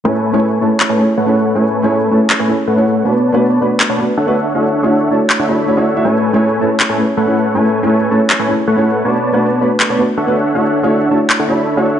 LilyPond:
<<
  \new Staff \with { instrumentName = "Supersaw synth" } { \time 4/4 \key a \major \tempo 4 = 160 <a a' b' cis'' gis''>8. <a a' b' cis'' gis''>8. <a a' b' cis'' a''>16 r8 <a a' b' cis'' gis''>16 r8 <a a' b' cis'' fis''>4 | <a a' b' cis'' gis''>8. <a a' b' cis'' gis''>8. <a a' b' cis'' a''>16 r8 <a a' b' cis'' gis''>16 r8 <a a' b' cis'' fis''>4 | <b b' cis'' d'' a''>8. <b b' cis'' d'' a''>8. <b b' cis'' d'' b''>16 r8 <b b' cis'' d'' a''>16 r8 <d' a' cis'' e'' fis''>4 | <d' a' cis'' e'' fis''>8. <d' a' cis'' e'' fis''>8. <d' a' cis'' e'' a''>16 r8 <d' a' cis'' e'' fis''>16 <d' a' cis'' e'' b''>8. <d' a' cis'' e'' fis''>8. |
<a a' b' cis'' gis''>8. <a a' b' cis'' gis''>8. <a a' b' cis'' a''>16 r8 <a a' b' cis'' gis''>16 r8 <a a' b' cis'' fis''>4 | <a a' b' cis'' gis''>8. <a a' b' cis'' gis''>8. <a a' b' cis'' a''>16 r8 <a a' b' cis'' gis''>16 r8 <a a' b' cis'' fis''>4 | <b b' cis'' d'' a''>8. <b b' cis'' d'' a''>8. <b b' cis'' d'' b''>16 r8 <b b' cis'' d'' a''>16 r8 <d' a' cis'' e'' fis''>4 | <d' a' cis'' e'' fis''>8. <d' a' cis'' e'' fis''>8. <d' a' cis'' e'' a''>16 r8 <d' a' cis'' e'' fis''>16 <d' a' cis'' e'' b''>8. <d' a' cis'' e'' fis''>8. | }
  \new Staff \with { instrumentName = "Grand piano" } { \time 4/4 \key a \major <a cis' e' gis' cis''>16 r8 <a cis' e' gis' cis''>16 r8 <a cis' e' gis' cis''>4 <a cis' e' gis' cis''>16 r8 <a cis' e' gis' cis''>16 r8 | <a cis' e' gis' cis''>16 r8 <a cis' e' gis' cis''>16 r8 <a cis' e' gis' cis''>4 <a cis' e' gis' cis''>16 r8 <a cis' e' gis' cis''>16 r8 | <a b d' fis' b'>16 r8 <a b d' fis' b'>16 r8 <a b d' fis' b'>4 <a b d' fis' b'>16 r8 <a b d' fis' b'>16 r8 | <a d' e' fis' cis''>16 r8 <a d' e' fis' cis''>16 r8 <a d' e' fis' cis''>4 <a d' e' fis' cis''>16 r16 <a d' e' fis' cis''>16 <a d' e' fis' cis''>16 r16 <a d' e' fis' e''>16 |
<a cis' e' gis' cis''>16 r8 <a cis' e' gis' cis''>16 r8 <a cis' e' gis' cis''>4 <a cis' e' gis' cis''>16 r8 <a cis' e' gis' cis''>16 r8 | <a cis' e' gis' cis''>16 r8 <a cis' e' gis' cis''>16 r8 <a cis' e' gis' cis''>4 <a cis' e' gis' cis''>16 r8 <a cis' e' gis' cis''>16 r8 | <a b d' fis' b'>16 r8 <a b d' fis' b'>16 r8 <a b d' fis' b'>4 <a b d' fis' b'>16 r8 <a b d' fis' b'>16 r8 | <a d' e' fis' cis''>16 r8 <a d' e' fis' cis''>16 r8 <a d' e' fis' cis''>4 <a d' e' fis' cis''>16 r8 <a d' e' fis' cis''>16 r8 | }
  \new DrumStaff \with { instrumentName = "Drums" } \drummode { \time 4/4 r4 r4 hc4 r4 | r4 r4 hc4 r4 | r4 r4 hc4 r4 | r4 r4 hc4 r4 |
r4 r4 hc4 r4 | r4 r4 hc4 r4 | r4 r4 hc4 r4 | r4 r4 hc4 r4 | }
>>